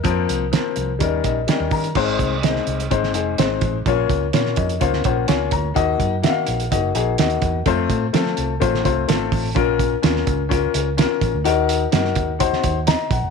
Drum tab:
CC |----------------|x---------------|----------------|----------------|
HH |x-x-x-x-x-x-x-ox|--x-x-xxx-x-x-x-|x-x-x-xxx-x-x-x-|x-x-x-xxx-x-xxx-|
SD |----o-------o---|----oo---o--o---|----oo---o--o---|----o-------o---|
BD |o-------o-o---o-|o-o-----o-----o-|o-o---o-o-o---o-|o-o-----o-----o-|

CC |----------------|----------------|----------------|
HH |x-x-x-x-x-x-x-o-|x-x-x-x-x-x-x-x-|x-x-x-x-x-x-x-x-|
SD |----oo---o--o---|----oo------o---|----oo---o--o---|
BD |o-o-----o-o---o-|o-o---o-o-----o-|------o-o-o---o-|